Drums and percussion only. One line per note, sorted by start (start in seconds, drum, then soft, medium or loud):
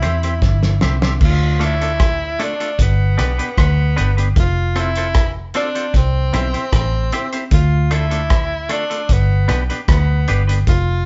0.03 closed hi-hat medium
0.23 closed hi-hat soft
0.42 kick loud
0.42 snare medium
0.63 snare medium
0.81 snare medium
1.02 snare medium
1.21 kick loud
1.21 crash medium
1.61 closed hi-hat medium
1.81 closed hi-hat medium
2.00 kick loud
2.00 cross-stick loud
2.00 closed hi-hat medium
2.40 closed hi-hat medium
2.60 closed hi-hat medium
2.79 kick loud
2.79 closed hi-hat loud
3.19 cross-stick medium
3.19 closed hi-hat medium
3.39 closed hi-hat medium
3.58 kick loud
3.58 cross-stick loud
3.58 closed hi-hat medium
3.98 closed hi-hat medium
4.18 closed hi-hat medium
4.36 kick loud
4.36 closed hi-hat medium
4.76 closed hi-hat medium
4.96 closed hi-hat medium
5.14 kick loud
5.14 cross-stick loud
5.14 closed hi-hat loud
5.54 closed hi-hat medium
5.75 closed hi-hat soft
5.94 kick medium
5.94 closed hi-hat loud
6.34 cross-stick medium
6.34 closed hi-hat medium
6.54 closed hi-hat medium
6.73 kick loud
6.73 cross-stick loud
6.73 closed hi-hat medium
7.12 closed hi-hat medium
7.33 closed hi-hat medium
7.51 kick loud
7.51 closed hi-hat loud
7.91 closed hi-hat medium
8.11 closed hi-hat medium
8.30 kick loud
8.30 cross-stick loud
8.30 closed hi-hat medium
8.69 closed hi-hat medium
8.91 closed hi-hat soft
9.09 kick loud
9.09 closed hi-hat loud
9.49 cross-stick medium
9.49 closed hi-hat medium
9.70 closed hi-hat soft
9.88 kick loud
9.88 cross-stick loud
9.88 closed hi-hat medium
10.28 closed hi-hat medium
10.49 closed hi-hat medium
10.67 kick loud
10.67 closed hi-hat medium